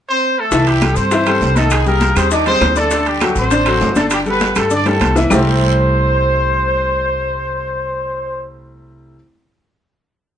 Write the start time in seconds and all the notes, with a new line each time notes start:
0.08 C4 C5
0.38 A3 A4
0.51 C2 E3 E4 E5, high bongo, high conga, long guiro, maracas
0.66 G3 G4, high conga, high timbale, maracas
0.81 G3 G4 A4, high bongo, high conga, high timbale, short guiro, claves, maracas
0.96 G2 C4 C5, high conga, short guiro, maracas
1.11 E3 E4 E5, high bongo, high conga, high timbale, long guiro, maracas
1.26 G3 G4 A4, high bongo, high conga, high timbale, claves, maracas
1.41 C2, high bongo, low bongo, high conga, short guiro, maracas
1.56 D#3 A3 D#4 A4 D#5, high bongo, high conga, high timbale, short guiro, maracas
1.70 G#3 G#4, high bongo, high conga, high timbale, long guiro, claves, maracas
1.86 G3 A#3 G4 G#4 A#4, high bongo, high conga, maracas
2.01 high bongo, high conga, high timbale, short guiro, maracas
2.15 D#2 G3 C4 G4 G#4 C5, high conga, high timbale, short guiro, claves, maracas
2.31 D#3 D4 D#4 D5 D#5, high bongo, high conga, long guiro, maracas
2.46 G3 C4 G4 G#4 C5, high bongo, high conga, high timbale, maracas
2.61 D2, high bongo, low bongo, high conga, high timbale, short guiro, claves, maracas
2.76 D3 A3 D4 A4 D5, short guiro, maracas
2.91 D3 D4 D5, high bongo, high conga, long guiro, maracas
3.06 G3 G4, high bongo, high conga, high timbale, maracas
3.21 F#3 F#4 A4, high bongo, high conga, high timbale, short guiro, claves, maracas
3.36 A1 C4 C5, high conga, short guiro, maracas
3.50 D3 D4 D5, high bongo, high conga, high timbale, long guiro, maracas
3.65 F#3 F#4 A4, high bongo, high conga, high timbale, claves, maracas
3.81 G1, high bongo, low bongo, high conga, low timbale, short guiro, maracas
3.95 D3 A3 D4 A4 D5, high bongo, high conga, high timbale, short guiro, maracas
4.10 G3 G4, high bongo, high timbale, long guiro, claves, maracas
4.26 G3 B3 G4 A4 B4, high conga, maracas
4.40 high bongo, high conga, high timbale, short guiro, maracas
4.55 G2 G3 A3 G4 A4, high conga, high timbale, short guiro, claves, maracas
4.60 A4
4.70 D3 D4 D5, high conga, long guiro, maracas
4.75 D4 D5
4.86 G3 A3 G4 A4, low bongo, high conga, high timbale, maracas
5.01 C2, low bongo, high conga, high timbale, short guiro, claves, maracas
5.16 E3 E4 E5, low bongo, high conga, short guiro, maracas
5.30 C2 C3 G3 A3 C4 E4 G4 C5, low bongo, low conga, low timbale, long guiro, claves, maracas